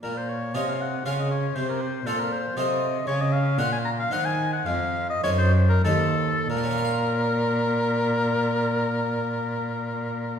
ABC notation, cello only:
X:1
M:3/4
L:1/8
Q:1/4=108
K:Bbm
V:1 name="Cello" clef=bass
B,,2 C,2 D,2 | C,2 B,,2 C,2 | D,2 B,,2 E,2 | F,,2 G,,2 E,,2 |
B,,6- | B,,6 |]